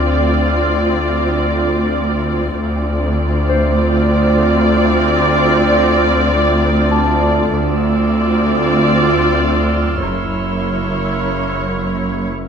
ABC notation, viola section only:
X:1
M:4/4
L:1/8
Q:1/4=96
K:Dm
V:1 name="Viola section"
[CF]8 | [CF]8- | [CF]8 | [CF]8 |
[^A,E]6- [A,E] z |]